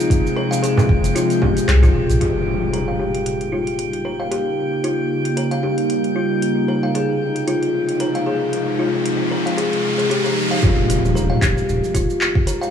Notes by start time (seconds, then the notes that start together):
Already playing: C3 F3 G#3 F4 G5
0.00 cabasa
0.10 F4, kick, closed hi-hat, cabasa
0.27 cabasa
0.36 A#4
0.51 F5, cabasa
0.63 G#4, closed hi-hat, cabasa
0.77 frame drum, cabasa
0.89 F1, kick
1.04 closed hi-hat, cabasa
1.15 F4, closed hi-hat, cabasa
1.30 closed hi-hat, cabasa
1.42 G4, kick, frame drum
1.57 closed hi-hat, cabasa
1.68 C2 G#4, clap, closed hi-hat, cabasa
1.83 F4, kick, closed hi-hat, frame drum, cabasa
1.94 D#1 G#4
2.09 A#1, closed hi-hat, cabasa
2.21 C#3 G3 A#3 D#4 F4 G5, closed hi-hat, impact
2.73 A#4, closed hi-hat
2.88 F5
3.00 G4
3.15 closed hi-hat
3.26 closed hi-hat
3.41 closed hi-hat
3.52 F4
3.67 closed hi-hat
3.79 closed hi-hat
3.93 closed hi-hat
4.05 A#4
4.20 F5
4.31 G4, closed hi-hat
4.84 F4, closed hi-hat
5.25 closed hi-hat
5.37 A#4, closed hi-hat
5.51 F5, closed hi-hat
5.63 G4
5.78 closed hi-hat
5.90 closed hi-hat
6.04 closed hi-hat
6.16 F4
6.42 C3 F3 G#3, closed hi-hat, riser
6.68 A#4
6.83 F5
6.95 G#4, closed hi-hat
7.36 closed hi-hat
7.48 F4, closed hi-hat
7.63 closed hi-hat
7.89 closed hi-hat
8.00 A#4, closed hi-hat
8.15 F5, closed hi-hat
8.26 G#4
8.53 closed hi-hat
8.79 F4
9.06 closed hi-hat
9.31 A#4
9.46 F5, closed hi-hat
9.57 G#4, closed hi-hat
9.73 closed hi-hat
9.98 G#4, closed hi-hat
10.10 G4, closed hi-hat
10.24 A#4, closed hi-hat
10.51 F5
10.63 D#1 F4, kick, impact, cabasa
10.90 closed hi-hat, cabasa
11.05 cabasa
11.15 A#4, cabasa
11.30 F5
11.42 D#1 G4, kick, clap, closed hi-hat, cabasa
11.58 cabasa
11.68 D#1, cabasa
11.84 cabasa
11.94 D#1 F4, kick, closed hi-hat, cabasa
12.10 cabasa
12.21 clap, cabasa
12.35 kick
12.47 A#4, closed hi-hat, cabasa
12.61 F5, cabasa